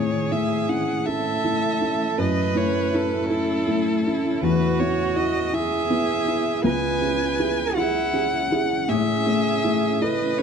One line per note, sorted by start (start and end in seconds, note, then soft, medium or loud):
0.00 2.15 A2 medium
0.00 4.39 A3 medium
0.00 4.39 C#4 medium
0.00 4.39 E4 medium
0.00 1.07 G#4 loud
0.00 0.33 C#5 medium
0.31 0.65 A3 soft
0.31 0.65 E4 medium
0.31 0.71 E5 medium
0.68 1.03 C#4 medium
0.68 1.03 E4 medium
0.68 1.08 F#5 medium
1.05 1.40 C#4 medium
1.05 1.41 E4 medium
1.05 2.20 A4 loud
1.05 2.19 E5 medium
1.44 1.78 A3 medium
1.44 1.78 E4 medium
1.81 2.15 C#4 medium
1.81 2.15 E4 medium
2.18 4.38 F#2 medium
2.18 3.29 B4 loud
2.18 2.58 D#5 medium
2.54 2.89 A3 medium
2.54 2.89 E4 medium
2.54 2.96 C#5 medium
2.93 3.27 C#4 medium
2.93 3.27 E4 medium
2.93 4.42 A4 medium
3.30 3.64 C#4 medium
3.30 3.64 E4 medium
3.30 4.04 E4 loud
3.67 4.01 A3 medium
3.67 4.02 E4 medium
4.06 4.39 C#4 medium
4.06 4.39 E4 medium
4.06 4.45 E4 loud
4.42 6.61 E2 medium
4.42 6.66 B3 medium
4.42 8.85 E4 medium
4.42 5.55 F#4 loud
4.42 8.89 G#4 medium
4.42 4.81 B4 medium
4.79 5.13 B3 medium
4.79 5.13 E4 medium
4.79 5.18 C#5 medium
5.16 5.50 E4 medium
5.16 5.55 D#5 medium
5.53 5.87 E4 medium
5.53 6.64 G#4 loud
5.53 6.65 E5 medium
5.90 6.24 B3 medium
5.90 6.24 E4 medium
6.28 6.61 E4 medium
6.64 8.84 C#2 medium
6.64 10.42 C#4 medium
6.64 7.78 B4 loud
6.64 7.74 G#5 loud
7.02 7.35 C#4 medium
7.02 7.35 G#4 medium
7.39 7.73 E4 medium
7.39 7.73 G#4 medium
7.76 8.51 E4 loud
7.76 8.10 E4 medium
7.76 8.11 G#4 medium
7.76 8.90 F#5 loud
8.13 8.47 C#4 medium
8.13 8.47 G#4 medium
8.52 8.85 E4 medium
8.52 8.85 G#4 medium
8.88 10.42 A2 medium
8.88 10.42 A3 medium
8.88 10.42 E4 medium
8.88 10.03 G#4 loud
8.88 10.03 E5 loud
9.26 9.60 A3 medium
9.26 9.60 C#4 medium
9.64 9.97 A3 medium
9.64 9.97 E4 medium
10.01 10.34 E4 medium
10.01 10.35 A4 medium
10.01 10.42 B4 loud
10.01 10.40 D#5 medium
10.38 10.42 C#4 medium
10.38 10.42 A4 medium
10.38 10.42 C#5 loud